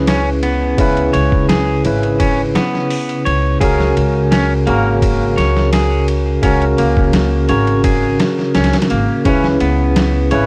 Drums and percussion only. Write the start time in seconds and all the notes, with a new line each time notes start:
0.07 snare, ride
0.43 ride
0.78 kick, ride
0.97 ride
1.14 ride
1.32 kick
1.49 snare, ride
1.85 ride
2.03 ride
2.20 kick, ride
2.55 snare, ride
2.75 snare
2.90 open hi-hat
3.09 ride
3.26 ride
3.61 kick, ride
3.80 snare
3.97 ride
4.32 snare, ride
4.67 ride
5.02 kick, ride
5.38 snare, ride
5.57 snare
5.73 snare, ride
6.08 ride
6.43 kick, ride
6.62 ride
6.78 ride
6.97 kick
7.13 snare, ride
7.49 ride
7.67 ride
7.84 kick, ride
8.20 snare, ride
8.39 snare
8.55 snare, ride
8.64 snare, ride
8.73 snare, ride
8.82 snare, ride
8.90 ride
9.25 kick, ride
9.44 snare
9.60 ride
9.96 snare, ride
10.31 ride